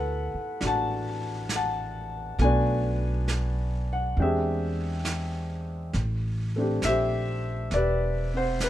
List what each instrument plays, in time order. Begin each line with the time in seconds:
Already playing: upright bass D2, grand piano A3 B3 E4 F#4 A4 B4 F#5 A5
0.34 muted upright bass stroke
0.61 upright bass A1, grand piano D4 F#4, brush sweep, snare
0.67 grand piano F#5 A5
1.49 snare, hi-hat pedal
1.56 grand piano F#5 A5
2.38 upright bass B1, grand piano A3 B3 G#5, brush sweep, snare
2.44 grand piano D4 F#4 D5
3.28 snare, hi-hat pedal
3.93 grand piano F#5
4.15 upright bass E2, grand piano G#3, brush sweep
4.19 grand piano C4 D4 G#4 E5 G5
4.23 grand piano G4
5.05 snare, hi-hat pedal
5.93 upright bass A1, brush sweep, snare
6.56 grand piano A3 C4 D4
6.61 grand piano G4
6.82 upright bass A#1, grand piano E5, snare, hi-hat pedal
6.87 grand piano G4 C5
7.71 upright bass E1, grand piano D5, brush sweep, snare
7.76 grand piano G4 B4
8.34 grand piano C4 C5 F#5
8.60 grand piano B4, snare, hi-hat pedal